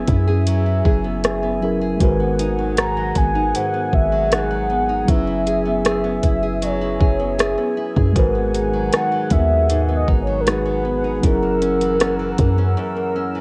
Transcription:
0.00 0.46 F#3 medium
0.00 1.56 F#3 medium
0.00 1.04 B3 medium
0.00 1.57 C#4 medium
0.00 1.58 E4 medium
0.00 0.27 G#4 medium
0.00 1.59 G#4 medium
0.00 11.20 G#4 medium
0.00 1.60 B4 medium
0.00 1.97 E5 medium
0.00 1.97 G#5 medium
0.08 0.82 F#2 loud
0.08 0.65 E4 medium
0.08 kick medium
0.08 closed hi-hat soft
0.28 0.85 G#4 medium
0.47 2.58 F#3 medium
0.47 closed hi-hat medium
0.66 1.61 E4 medium
0.85 1.97 F#1 loud
0.85 1.23 G#4 medium
0.85 kick medium
1.04 1.42 B3 medium
1.24 1.81 G#4 medium
1.24 cross-stick loud
1.24 closed hi-hat medium
1.43 2.19 B3 medium
1.61 2.00 F#3 medium
1.61 2.00 C#4 medium
1.61 2.08 E4 medium
1.61 2.01 E4 soft
1.61 2.01 G#4 medium
1.61 2.02 A#4 medium
1.81 2.61 G#4 medium
1.98 3.12 G#1 loud
1.98 3.53 G#2 medium
1.98 5.04 D#3 medium
1.98 5.03 G#3 medium
1.98 5.04 F#4 medium
1.98 5.05 F#5 medium
1.98 5.05 G#5 medium
1.98 kick loud
1.98 closed hi-hat medium
2.03 5.05 A#4 medium
2.03 5.06 B4 medium
2.20 3.16 B3 medium
2.39 2.76 D#4 medium
2.39 closed hi-hat medium
2.58 2.96 F#3 medium
2.77 3.34 D#4 medium
2.77 3.19 A#5 loud
2.77 cross-stick loud
2.77 closed hi-hat medium
2.97 4.12 F#3 medium
3.15 3.53 G#1 loud
3.15 3.73 B3 medium
3.15 3.57 G#5 loud
3.15 kick medium
3.15 closed hi-hat soft
3.35 3.93 D#4 medium
3.55 5.16 G#2 medium
3.55 3.96 F#5 loud
3.55 closed hi-hat medium
3.73 4.69 B3 medium
3.93 5.04 G#1 loud
3.93 4.35 E5 medium
3.93 kick medium
4.12 4.50 F#3 medium
4.31 4.88 D#4 medium
4.31 5.11 F#5 loud
4.31 cross-stick loud
4.31 closed hi-hat medium
4.51 5.08 F#3 medium
4.70 5.65 B3 medium
4.89 5.16 D#4 medium
5.05 6.20 F#1 loud
5.05 8.10 F#3 medium
5.05 6.61 F#3 medium
5.05 8.11 C#4 medium
5.05 8.12 E4 medium
5.05 8.13 E5 medium
5.05 11.20 G#5 medium
5.05 kick loud
5.05 closed hi-hat medium
5.09 8.13 G#4 medium
5.09 8.14 B4 medium
5.09 5.86 E5 loud
5.27 6.22 E4 medium
5.47 5.84 G#4 medium
5.47 closed hi-hat medium
5.66 6.04 B3 medium
5.85 6.42 G#4 medium
5.85 6.65 E5 loud
5.85 cross-stick loud
5.85 closed hi-hat medium
6.04 7.19 B3 medium
6.23 6.97 F#1 loud
6.23 6.80 E4 medium
6.23 kick medium
6.23 closed hi-hat soft
6.43 7.00 G#4 medium
6.62 8.73 F#3 medium
6.62 7.78 C#5 medium
6.62 closed hi-hat medium
6.81 7.76 E4 medium
7.00 7.56 F#1 loud
7.00 7.38 G#4 medium
7.00 kick medium
7.19 7.57 B3 medium
7.39 7.96 G#4 medium
7.39 cross-stick loud
7.39 closed hi-hat medium
7.58 8.34 B3 medium
7.77 8.23 E4 medium
7.96 8.15 F#2 loud
7.96 8.76 G#4 medium
7.96 kick medium
8.12 8.90 G#1 loud
8.12 9.68 G#2 medium
8.12 10.42 D#3 medium
8.12 10.41 G#3 medium
8.12 10.43 F#4 medium
8.12 13.41 F#5 medium
8.12 kick loud
8.12 closed hi-hat medium
8.18 10.44 A#4 medium
8.18 10.44 B4 medium
8.35 9.30 B3 medium
8.54 8.91 D#4 medium
8.54 closed hi-hat soft
8.73 9.11 F#3 medium
8.93 9.50 D#4 medium
8.93 9.34 F#5 loud
8.93 cross-stick loud
8.93 closed hi-hat medium
9.12 10.27 F#3 medium
9.30 10.05 D#2 loud
9.30 9.87 B3 medium
9.30 9.96 E5 loud
9.30 kick medium
9.30 closed hi-hat soft
9.69 11.23 G#2 medium
9.69 closed hi-hat medium
9.89 10.83 B3 medium
9.96 10.08 D#5 loud
10.08 11.20 G#1 loud
10.08 10.45 D#4 medium
10.08 kick medium
10.22 10.42 C#5 medium
10.27 10.65 F#3 medium
10.41 10.49 A#4 medium
10.45 11.23 G#3 soft
10.45 11.23 D#4 soft
10.45 11.03 D#4 medium
10.45 11.24 F#4 soft
10.45 11.24 G#4 soft
10.45 11.24 B4 loud
10.45 11.25 B4 medium
10.45 cross-stick loud
10.45 closed hi-hat medium
10.66 11.81 F#3 medium
10.85 11.31 B3 medium
11.04 11.31 D#4 medium
11.21 12.35 F#1 loud
11.21 12.76 F#2 medium
11.21 13.41 F#3 medium
11.21 13.41 C#4 medium
11.21 13.41 E4 medium
11.21 13.41 A#4 medium
11.21 13.41 E6 medium
11.21 kick loud
11.21 closed hi-hat medium
11.25 13.41 G#4 medium
11.25 13.41 A#4 loud
11.25 13.41 A#4 medium
11.43 12.38 A#3 medium
11.62 11.99 C#4 medium
11.62 closed hi-hat soft
11.81 12.18 E3 medium
11.81 closed hi-hat soft
12.00 12.57 C#4 medium
12.00 cross-stick loud
12.00 closed hi-hat medium
12.19 13.34 E3 medium
12.38 12.76 F#2 loud
12.38 12.95 A#3 medium
12.38 kick medium
12.38 closed hi-hat soft
12.58 13.14 C#4 medium
12.77 13.41 F#2 medium
12.96 13.41 A#3 medium
13.16 13.41 C#4 medium
13.35 13.41 E3 medium

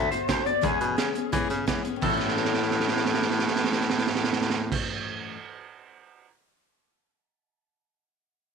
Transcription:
0.00 0.11 D3 medium
0.00 0.11 F#3 medium
0.00 0.11 B3 medium
0.00 0.11 F#4 medium
0.00 0.11 E5 medium
0.11 0.18 D2 medium
0.11 0.27 B3 soft
0.11 0.28 F#4 soft
0.11 0.28 A4 medium
0.11 0.28 C5 medium
0.11 closed hi-hat medium
0.28 0.42 D2 medium
0.28 0.46 F#3 medium
0.28 0.46 B3 medium
0.28 0.44 F#4 medium
0.28 0.44 A4 medium
0.28 0.46 C5 loud
0.28 kick medium
0.28 snare loud
0.28 closed hi-hat medium
0.45 0.53 D2 medium
0.45 0.61 B3 soft
0.45 0.62 F#4 medium
0.45 0.62 A4 medium
0.45 0.63 D5 medium
0.45 closed hi-hat medium
0.61 0.76 E2 loud
0.61 0.80 E3 medium
0.61 0.80 G#3 medium
0.61 0.80 B3 medium
0.61 0.79 C#4 medium
0.61 0.78 G#4 medium
0.61 1.31 G#4 loud
0.61 kick loud
0.61 closed hi-hat medium
0.80 0.94 B2 loud
0.80 0.96 B3 soft
0.80 0.97 C#4 medium
0.80 0.98 G#4 soft
0.80 closed hi-hat medium
0.97 1.11 C#3 medium
0.97 1.15 G#3 medium
0.97 1.15 B3 medium
0.97 1.14 C#4 medium
0.97 1.13 G#4 medium
0.97 snare loud
0.97 closed hi-hat medium
1.14 1.31 B3 soft
1.14 1.32 C#4 medium
1.14 1.32 G#4 medium
1.14 closed hi-hat medium
1.32 1.50 E3 medium
1.32 1.46 E3 medium
1.32 1.50 G#3 loud
1.32 1.50 B3 loud
1.32 1.49 C#4 loud
1.32 1.48 G#4 loud
1.32 kick loud
1.32 closed hi-hat medium
1.49 1.63 C#3 loud
1.49 1.66 B3 soft
1.49 1.67 C#4 medium
1.49 1.67 G#4 medium
1.49 closed hi-hat medium
1.67 1.81 E3 medium
1.67 1.85 G#3 medium
1.67 1.85 B3 medium
1.67 1.85 C#4 medium
1.67 1.83 G#4 medium
1.67 kick medium
1.67 snare loud
1.67 closed hi-hat medium
1.84 1.92 E3 medium
1.84 2.03 B3 soft
1.84 2.03 C#4 soft
1.84 2.02 G#4 medium
1.84 closed hi-hat medium
1.96 5.36 A2 medium
2.02 4.75 A2 loud
2.02 5.36 E3 medium
2.02 4.75 A4 loud
2.02 kick medium
2.02 crash medium
2.06 5.36 F#3 medium
2.06 5.36 A3 loud
2.14 5.36 C#4 medium
2.14 5.36 F#4 medium
2.20 snare soft
2.28 snare soft
2.37 snare medium
2.45 snare medium
2.54 snare medium
2.62 snare soft
2.71 snare medium
2.80 snare medium
2.88 snare medium
2.97 snare medium
3.05 snare medium
3.14 snare medium
3.22 snare medium
3.31 snare medium
3.39 snare medium
3.48 snare medium
3.56 snare medium
3.64 snare medium
3.73 snare medium
3.81 snare medium
3.90 snare medium
3.98 snare medium
4.07 snare medium
4.15 snare medium
4.24 snare medium
4.33 snare loud
4.41 snare loud
4.50 snare medium
4.72 kick medium
4.72 crash medium

